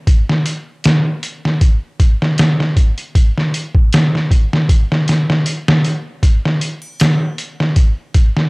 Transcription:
0, 0, Header, 1, 2, 480
1, 0, Start_track
1, 0, Tempo, 769231
1, 44, Time_signature, 4, 2, 24, 8
1, 5300, End_track
2, 0, Start_track
2, 0, Title_t, "Drums"
2, 44, Note_on_c, 9, 36, 109
2, 45, Note_on_c, 9, 42, 88
2, 107, Note_off_c, 9, 36, 0
2, 107, Note_off_c, 9, 42, 0
2, 184, Note_on_c, 9, 38, 52
2, 246, Note_off_c, 9, 38, 0
2, 285, Note_on_c, 9, 42, 73
2, 347, Note_off_c, 9, 42, 0
2, 525, Note_on_c, 9, 42, 90
2, 533, Note_on_c, 9, 38, 118
2, 587, Note_off_c, 9, 42, 0
2, 596, Note_off_c, 9, 38, 0
2, 767, Note_on_c, 9, 42, 70
2, 829, Note_off_c, 9, 42, 0
2, 906, Note_on_c, 9, 38, 45
2, 968, Note_off_c, 9, 38, 0
2, 1006, Note_on_c, 9, 36, 113
2, 1006, Note_on_c, 9, 42, 88
2, 1068, Note_off_c, 9, 36, 0
2, 1068, Note_off_c, 9, 42, 0
2, 1246, Note_on_c, 9, 36, 104
2, 1246, Note_on_c, 9, 42, 73
2, 1308, Note_off_c, 9, 36, 0
2, 1309, Note_off_c, 9, 42, 0
2, 1386, Note_on_c, 9, 38, 46
2, 1448, Note_off_c, 9, 38, 0
2, 1485, Note_on_c, 9, 42, 85
2, 1494, Note_on_c, 9, 38, 107
2, 1548, Note_off_c, 9, 42, 0
2, 1556, Note_off_c, 9, 38, 0
2, 1624, Note_on_c, 9, 38, 46
2, 1687, Note_off_c, 9, 38, 0
2, 1726, Note_on_c, 9, 36, 99
2, 1727, Note_on_c, 9, 42, 72
2, 1789, Note_off_c, 9, 36, 0
2, 1790, Note_off_c, 9, 42, 0
2, 1858, Note_on_c, 9, 42, 43
2, 1920, Note_off_c, 9, 42, 0
2, 1967, Note_on_c, 9, 36, 108
2, 1968, Note_on_c, 9, 42, 85
2, 2029, Note_off_c, 9, 36, 0
2, 2031, Note_off_c, 9, 42, 0
2, 2107, Note_on_c, 9, 38, 41
2, 2169, Note_off_c, 9, 38, 0
2, 2209, Note_on_c, 9, 42, 75
2, 2272, Note_off_c, 9, 42, 0
2, 2338, Note_on_c, 9, 36, 97
2, 2400, Note_off_c, 9, 36, 0
2, 2450, Note_on_c, 9, 42, 91
2, 2458, Note_on_c, 9, 38, 120
2, 2512, Note_off_c, 9, 42, 0
2, 2521, Note_off_c, 9, 38, 0
2, 2591, Note_on_c, 9, 38, 39
2, 2653, Note_off_c, 9, 38, 0
2, 2689, Note_on_c, 9, 36, 93
2, 2693, Note_on_c, 9, 42, 66
2, 2751, Note_off_c, 9, 36, 0
2, 2755, Note_off_c, 9, 42, 0
2, 2829, Note_on_c, 9, 38, 59
2, 2891, Note_off_c, 9, 38, 0
2, 2928, Note_on_c, 9, 36, 102
2, 2929, Note_on_c, 9, 42, 91
2, 2990, Note_off_c, 9, 36, 0
2, 2992, Note_off_c, 9, 42, 0
2, 3069, Note_on_c, 9, 38, 53
2, 3132, Note_off_c, 9, 38, 0
2, 3169, Note_on_c, 9, 42, 69
2, 3178, Note_on_c, 9, 38, 58
2, 3232, Note_off_c, 9, 42, 0
2, 3240, Note_off_c, 9, 38, 0
2, 3306, Note_on_c, 9, 38, 55
2, 3369, Note_off_c, 9, 38, 0
2, 3407, Note_on_c, 9, 42, 86
2, 3469, Note_off_c, 9, 42, 0
2, 3546, Note_on_c, 9, 38, 113
2, 3609, Note_off_c, 9, 38, 0
2, 3647, Note_on_c, 9, 42, 65
2, 3710, Note_off_c, 9, 42, 0
2, 3886, Note_on_c, 9, 36, 105
2, 3887, Note_on_c, 9, 42, 83
2, 3948, Note_off_c, 9, 36, 0
2, 3950, Note_off_c, 9, 42, 0
2, 4027, Note_on_c, 9, 38, 48
2, 4090, Note_off_c, 9, 38, 0
2, 4126, Note_on_c, 9, 42, 76
2, 4189, Note_off_c, 9, 42, 0
2, 4254, Note_on_c, 9, 81, 61
2, 4316, Note_off_c, 9, 81, 0
2, 4366, Note_on_c, 9, 42, 89
2, 4366, Note_on_c, 9, 82, 84
2, 4375, Note_on_c, 9, 38, 116
2, 4428, Note_off_c, 9, 42, 0
2, 4428, Note_off_c, 9, 82, 0
2, 4437, Note_off_c, 9, 38, 0
2, 4606, Note_on_c, 9, 42, 67
2, 4668, Note_off_c, 9, 42, 0
2, 4743, Note_on_c, 9, 38, 50
2, 4805, Note_off_c, 9, 38, 0
2, 4842, Note_on_c, 9, 42, 87
2, 4844, Note_on_c, 9, 36, 110
2, 4905, Note_off_c, 9, 42, 0
2, 4906, Note_off_c, 9, 36, 0
2, 5082, Note_on_c, 9, 42, 68
2, 5083, Note_on_c, 9, 36, 108
2, 5144, Note_off_c, 9, 42, 0
2, 5146, Note_off_c, 9, 36, 0
2, 5221, Note_on_c, 9, 38, 51
2, 5283, Note_off_c, 9, 38, 0
2, 5300, End_track
0, 0, End_of_file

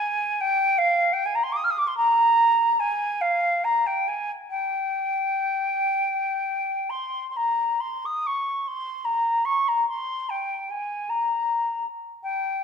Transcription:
0, 0, Header, 1, 2, 480
1, 0, Start_track
1, 0, Tempo, 764331
1, 728, Tempo, 807537
1, 1208, Time_signature, 6, 3, 24, 8
1, 1208, Tempo, 840336
1, 2648, Tempo, 925926
1, 3608, Tempo, 1013514
1, 4088, Tempo, 875912
1, 4568, Tempo, 817439
1, 6008, Tempo, 779221
1, 7213, End_track
2, 0, Start_track
2, 0, Title_t, "Flute"
2, 0, Program_c, 0, 73
2, 0, Note_on_c, 0, 80, 91
2, 253, Note_on_c, 0, 79, 86
2, 262, Note_off_c, 0, 80, 0
2, 489, Note_on_c, 0, 77, 93
2, 499, Note_off_c, 0, 79, 0
2, 708, Note_on_c, 0, 79, 80
2, 717, Note_off_c, 0, 77, 0
2, 784, Note_on_c, 0, 80, 71
2, 793, Note_off_c, 0, 79, 0
2, 840, Note_on_c, 0, 82, 67
2, 849, Note_off_c, 0, 80, 0
2, 889, Note_on_c, 0, 84, 74
2, 898, Note_off_c, 0, 82, 0
2, 942, Note_on_c, 0, 86, 73
2, 951, Note_off_c, 0, 84, 0
2, 965, Note_on_c, 0, 87, 74
2, 974, Note_off_c, 0, 86, 0
2, 1013, Note_on_c, 0, 89, 70
2, 1022, Note_off_c, 0, 87, 0
2, 1051, Note_on_c, 0, 87, 69
2, 1060, Note_off_c, 0, 89, 0
2, 1096, Note_on_c, 0, 86, 76
2, 1105, Note_off_c, 0, 87, 0
2, 1151, Note_on_c, 0, 84, 71
2, 1160, Note_off_c, 0, 86, 0
2, 1205, Note_off_c, 0, 84, 0
2, 1209, Note_on_c, 0, 82, 95
2, 1681, Note_on_c, 0, 80, 82
2, 1689, Note_off_c, 0, 82, 0
2, 1918, Note_on_c, 0, 77, 81
2, 1926, Note_off_c, 0, 80, 0
2, 2164, Note_on_c, 0, 82, 73
2, 2172, Note_off_c, 0, 77, 0
2, 2290, Note_on_c, 0, 79, 71
2, 2299, Note_off_c, 0, 82, 0
2, 2414, Note_on_c, 0, 80, 69
2, 2422, Note_off_c, 0, 79, 0
2, 2546, Note_off_c, 0, 80, 0
2, 2654, Note_on_c, 0, 79, 79
2, 3870, Note_on_c, 0, 84, 63
2, 3878, Note_off_c, 0, 79, 0
2, 4059, Note_off_c, 0, 84, 0
2, 4063, Note_on_c, 0, 84, 44
2, 4093, Note_on_c, 0, 82, 71
2, 4101, Note_off_c, 0, 84, 0
2, 4333, Note_on_c, 0, 84, 70
2, 4341, Note_off_c, 0, 82, 0
2, 4471, Note_on_c, 0, 87, 67
2, 4479, Note_off_c, 0, 84, 0
2, 4588, Note_on_c, 0, 85, 64
2, 4597, Note_off_c, 0, 87, 0
2, 4828, Note_on_c, 0, 84, 68
2, 4837, Note_off_c, 0, 85, 0
2, 5047, Note_on_c, 0, 82, 64
2, 5056, Note_off_c, 0, 84, 0
2, 5284, Note_on_c, 0, 85, 60
2, 5292, Note_off_c, 0, 82, 0
2, 5419, Note_on_c, 0, 82, 62
2, 5428, Note_off_c, 0, 85, 0
2, 5533, Note_off_c, 0, 82, 0
2, 5541, Note_on_c, 0, 84, 65
2, 5779, Note_on_c, 0, 79, 61
2, 5788, Note_off_c, 0, 84, 0
2, 6020, Note_on_c, 0, 80, 61
2, 6029, Note_off_c, 0, 79, 0
2, 6261, Note_on_c, 0, 82, 61
2, 6270, Note_off_c, 0, 80, 0
2, 6729, Note_off_c, 0, 82, 0
2, 6961, Note_on_c, 0, 79, 73
2, 7213, Note_off_c, 0, 79, 0
2, 7213, End_track
0, 0, End_of_file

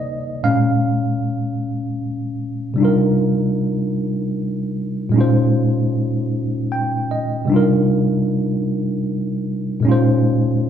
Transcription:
0, 0, Header, 1, 2, 480
1, 0, Start_track
1, 0, Tempo, 784314
1, 262, Time_signature, 6, 3, 24, 8
1, 6547, End_track
2, 0, Start_track
2, 0, Title_t, "Tine electric piano"
2, 0, Program_c, 0, 4
2, 0, Control_c, 0, 64, 127
2, 0, Note_on_c, 0, 48, 57
2, 0, Note_on_c, 0, 58, 53
2, 0, Note_on_c, 0, 63, 66
2, 0, Note_on_c, 0, 72, 86
2, 0, Note_on_c, 0, 74, 90
2, 0, Note_on_c, 0, 75, 93
2, 265, Note_on_c, 0, 46, 57
2, 269, Control_c, 0, 64, 0
2, 269, Note_on_c, 0, 77, 85
2, 270, Note_on_c, 0, 56, 52
2, 271, Note_off_c, 0, 48, 0
2, 272, Note_off_c, 0, 58, 0
2, 273, Note_off_c, 0, 74, 0
2, 273, Note_on_c, 0, 61, 63
2, 274, Note_off_c, 0, 72, 0
2, 275, Note_off_c, 0, 63, 0
2, 280, Note_off_c, 0, 75, 0
2, 393, Control_c, 0, 64, 127
2, 1201, Note_off_c, 0, 77, 0
2, 1676, Note_on_c, 0, 48, 68
2, 1679, Note_off_c, 0, 46, 0
2, 1682, Note_off_c, 0, 56, 0
2, 1683, Note_off_c, 0, 61, 0
2, 1688, Note_on_c, 0, 55, 65
2, 1701, Note_on_c, 0, 62, 61
2, 1711, Control_c, 0, 64, 0
2, 1715, Note_on_c, 0, 63, 65
2, 1729, Note_on_c, 0, 65, 62
2, 1742, Note_on_c, 0, 70, 77
2, 1823, Control_c, 0, 64, 127
2, 3104, Note_off_c, 0, 48, 0
2, 3111, Note_off_c, 0, 55, 0
2, 3117, Note_off_c, 0, 62, 0
2, 3117, Note_on_c, 0, 46, 72
2, 3124, Note_off_c, 0, 63, 0
2, 3131, Note_off_c, 0, 65, 0
2, 3132, Note_on_c, 0, 56, 66
2, 3137, Note_off_c, 0, 70, 0
2, 3145, Note_on_c, 0, 61, 61
2, 3149, Control_c, 0, 64, 0
2, 3157, Note_on_c, 0, 63, 67
2, 3171, Note_on_c, 0, 65, 65
2, 3186, Note_on_c, 0, 72, 79
2, 3266, Control_c, 0, 64, 127
2, 4112, Note_on_c, 0, 79, 62
2, 4330, Note_off_c, 0, 79, 0
2, 4353, Note_on_c, 0, 75, 64
2, 4545, Note_off_c, 0, 46, 0
2, 4552, Note_off_c, 0, 56, 0
2, 4559, Note_off_c, 0, 61, 0
2, 4561, Note_on_c, 0, 48, 73
2, 4565, Note_off_c, 0, 63, 0
2, 4571, Note_off_c, 0, 75, 0
2, 4572, Note_off_c, 0, 65, 0
2, 4574, Note_on_c, 0, 55, 68
2, 4579, Note_off_c, 0, 72, 0
2, 4588, Note_on_c, 0, 62, 68
2, 4590, Control_c, 0, 64, 0
2, 4601, Note_on_c, 0, 63, 68
2, 4613, Note_on_c, 0, 65, 66
2, 4627, Note_on_c, 0, 70, 82
2, 4681, Control_c, 0, 64, 127
2, 5987, Note_off_c, 0, 48, 0
2, 5993, Note_off_c, 0, 55, 0
2, 5999, Note_on_c, 0, 46, 74
2, 6000, Note_off_c, 0, 62, 0
2, 6007, Note_off_c, 0, 63, 0
2, 6013, Note_off_c, 0, 65, 0
2, 6013, Note_on_c, 0, 56, 67
2, 6020, Note_off_c, 0, 70, 0
2, 6027, Note_on_c, 0, 61, 72
2, 6030, Control_c, 0, 64, 0
2, 6039, Note_on_c, 0, 63, 69
2, 6053, Note_on_c, 0, 65, 69
2, 6067, Note_on_c, 0, 72, 85
2, 6120, Control_c, 0, 64, 127
2, 6547, Note_off_c, 0, 46, 0
2, 6547, Note_off_c, 0, 56, 0
2, 6547, Note_off_c, 0, 61, 0
2, 6547, Note_off_c, 0, 63, 0
2, 6547, Note_off_c, 0, 65, 0
2, 6547, Note_off_c, 0, 72, 0
2, 6547, End_track
0, 0, End_of_file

